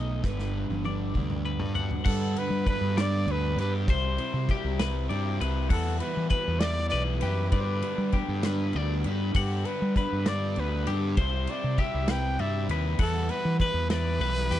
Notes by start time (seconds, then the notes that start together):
Already playing: B1 B2 F#3 A3 B3 C4 D#4 D#5
0.23 G1 G2 D3 G3 B3 D4 B4, kick, snare
0.39 snare
0.54 G3 B3 D4
0.69 G1, high tom
0.84 D3 G3 B3 D4 D5, high tom
1.14 D2 G2 D3 G3 B3 D4, kick, mid tom
1.30 mid tom
1.45 D4 B4
1.59 G2, floor tom
1.75 B3 D4 F#4 F#5, floor tom
1.80 G3
1.91 floor tom
2.05 G2 D3 G3 B3 D4 A4 F#5, kick, crash
2.36 D3 G3 B3 D4 B4, ride
2.50 G3
2.66 D3 G3 B3 D4 B4, kick, ride
2.81 G2
2.96 D3 G3 B3 D4 D5, snare, ride
3.01 D5
3.26 D2 D3 G3 B3 D4 B4, ride
3.31 B4
3.56 G2 B3 D4 G4, ride
3.60 D3 G3 B4
3.88 C2 C3 G3 C4 E4 C5, kick, ride
4.18 C3 G3 C4 E4, ride
4.34 C3
4.49 C3 G3 C4 E4 G4, kick, ride
4.64 C2
4.79 C3 G3 C4 E4 B4, snare, ride
5.09 G2 C3 G3 C4 E4 D5, ride
5.40 C2 C3 G3 C4 E4 B4, ride
5.70 E2 E3 G3 B3 E4 A4 F#5, kick, crash
5.99 E3 G3 B3 E4 B4, ride
6.17 E3
6.30 E3 G3 B3 E4 B4, kick, ride
6.48 E2
6.60 B3 E4 D5, snare, ride
6.64 E3 G3
6.89 B1 E3 B4 D5, ride
6.94 G3 B3 E4
7.20 F#2 B3 E4 G4 B4, ride
7.25 E3 G3
7.50 G2 D3 G3 B3 D4 B4 D5, kick, ride
7.59 B4 C5
7.82 D3 G3 B3 D4, ride
7.98 G3
8.12 D3 G3 B3 D4 G4, kick, ride
8.28 G2
8.43 D3 G3 B3 D4 B4, snare, ride
8.73 D2 D3 D5, ride
8.77 G3 B3 D4
9.04 G2 D3 G3 B3 D4 B4, ride
9.35 G2 D3 G3 B3 D4 G4 F#5, kick, crash
9.65 D3 G3 B3 D4 B4, ride
9.82 G3
9.96 D3 G3 B3 D4 B4, kick, ride
10.12 G2
10.26 D3 G3 B3 D4 D5, snare, ride
10.56 D2 D3 G3 B3 D4 B4, ride
10.87 G2 D3 G3 B3 D4 G4, ride
11.17 C2 C3 G3 C4 E4 C5, kick, ride
11.47 C3 G3 C4 E4 D5, ride
11.64 C3
11.78 C3 G3 C4 E4 G4 E5, kick, ride
11.94 C2
12.08 C3 G3 C4 E4 B4 G5, snare, ride
12.39 G2 C3 G3 C4 E4 D5 E5, ride
12.69 D#2 C3 G3 C4 E4 B4, ride
12.99 E2 E3 G3 B3 E4 A4 F#5, kick, crash
13.29 E3 G3 B3 E4 B4, ride
13.45 E3
13.60 E3 G3 B3 E4 B4, kick, ride
13.74 E2
13.90 E3 G3 B3 E4 B4 D5, snare, ride
14.19 B1 E3 G3 B3 E4 B4, ride
14.51 E2 E3 G3 B3 E4 G4, ride